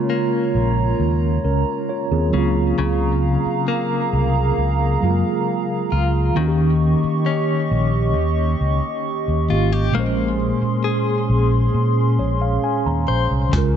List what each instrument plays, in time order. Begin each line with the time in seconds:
Already playing: tine electric piano C#3 G#3 A#3 F4, clean electric guitar C#3 G#3 F4, analog synth pad F4 C#5 A#5
0.10 clean electric guitar A#3
0.55 fingered electric bass A#1
1.00 fingered electric bass D#2
1.44 fingered electric bass C#2, tine electric piano C#4 A#4
1.89 tine electric piano F4 C#5
2.11 fingered electric bass D#2, tine electric piano C4 G#4
2.30 fingered electric bass C#2, clean electric guitar C#3, tine electric piano F#3, analog synth pad G#4 F5 A#5
2.34 tine electric piano A#3
2.38 tine electric piano F4
2.78 fingered electric bass C#2, clean electric guitar C#3
3.46 muted fingered electric bass stroke
3.68 clean electric guitar A#3
4.13 fingered electric bass C2
4.58 fingered electric bass C#2
5.01 fingered electric bass F#2, tine electric piano F#3 G#3
5.05 tine electric piano F4
5.09 tine electric piano A#3
5.92 fingered electric bass C#2, clean electric guitar F4
6.33 fingered electric bass D#2, tine electric piano D#3 A#3, clean electric guitar D#3, analog synth pad G4 D#5 C#6
6.39 tine electric piano C#4 F#4
6.48 tine electric piano G4
7.04 muted fingered electric bass stroke
7.26 clean electric guitar C#4
7.71 fingered electric bass A#1
8.16 fingered electric bass D#2
8.61 fingered electric bass C#2
9.28 fingered electric bass D#2
9.49 fingered electric bass G#1, tine electric piano D#3 A#3 C#4, clean electric guitar F4
9.53 tine electric piano G4
9.73 clean electric guitar G4
9.91 fingered electric bass A#1, tine electric piano A#2 G#3, clean electric guitar A#3, analog synth pad C#4 G#4 C6
9.97 tine electric piano C#4 C5
10.62 muted fingered electric bass stroke
10.84 clean electric guitar G#4
11.29 fingered electric bass A#1
11.74 fingered electric bass A#2
12.19 fingered electric bass A#1, tine electric piano C#5
12.41 tine electric piano F5
12.64 tine electric piano G#5
12.86 fingered electric bass D#2, tine electric piano A#5
13.08 fingered electric bass A#1, clean electric guitar C5
13.31 fingered electric bass C2
13.49 fingered electric bass C#2, tine electric piano C#3 G#3, clean electric guitar C#3, analog synth pad F4 A#5, kick, closed hi-hat
13.55 tine electric piano F4 A#4